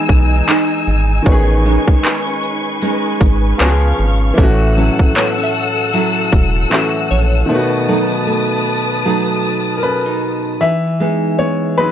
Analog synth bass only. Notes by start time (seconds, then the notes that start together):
0.09 B1
0.88 G#1
1.26 A1
1.88 G#1
3.21 G#1
3.61 C#2
3.99 G#1
4.38 A1
5.00 E1
6.33 E1
7.11 A#1